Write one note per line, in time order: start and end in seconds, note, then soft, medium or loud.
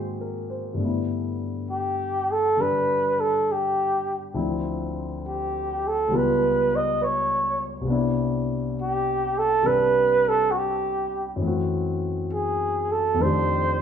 0.00 0.77 G#2 soft
0.00 0.79 D#3 soft
0.00 0.80 A#3 soft
0.00 0.81 C4 soft
0.00 0.83 F#4 soft
0.00 0.47 G#4 soft
0.21 0.67 A#4 soft
0.50 0.96 C5 soft
0.74 4.31 G2 soft
0.74 2.55 D3 soft
0.80 4.34 A3 soft
0.80 4.35 B3 soft
0.85 4.34 E4 soft
1.71 2.33 G4 medium
2.32 2.63 A4 medium
2.57 4.33 D3 soft
2.57 4.35 G3 soft
2.57 4.36 D4 soft
2.61 3.22 B4 medium
3.20 3.53 A4 medium
3.52 4.23 G4 medium
4.34 6.10 D2 soft
4.34 6.11 D3 soft
4.34 6.11 F3 soft
4.34 6.11 C4 soft
4.34 6.11 E4 soft
5.28 5.89 G4 medium
5.87 6.18 A4 medium
6.08 7.86 C#2 soft
6.08 7.86 C#3 soft
6.08 7.87 G3 soft
6.08 7.85 B3 soft
6.13 7.88 F4 soft
6.13 6.77 B4 medium
6.76 7.03 D#5 medium
7.01 7.05 B4 soft
7.01 7.75 C#5 medium
7.81 11.38 C2 soft
7.81 9.61 C3 soft
7.86 11.41 B3 soft
7.86 9.64 D4 soft
7.92 11.43 E4 soft
8.81 9.40 G4 medium
9.38 9.68 A4 medium
9.62 11.40 C3 soft
9.62 11.41 G3 soft
9.62 11.42 C4 soft
9.62 11.42 D4 soft
9.67 10.30 B4 medium
10.29 10.53 A4 medium
10.51 10.59 F#4 medium
10.58 11.30 G4 medium
11.36 13.16 F#2 soft
11.36 13.18 E3 soft
11.42 13.18 A3 soft
11.42 13.21 C4 soft
11.47 13.22 F#4 soft
12.33 12.93 G#4 medium
12.92 13.24 A4 medium
13.14 13.82 F2 soft
13.14 13.82 D#3 soft
13.19 13.82 A3 soft
13.19 13.82 D4 soft
13.19 13.82 C5 medium
13.25 13.82 G4 soft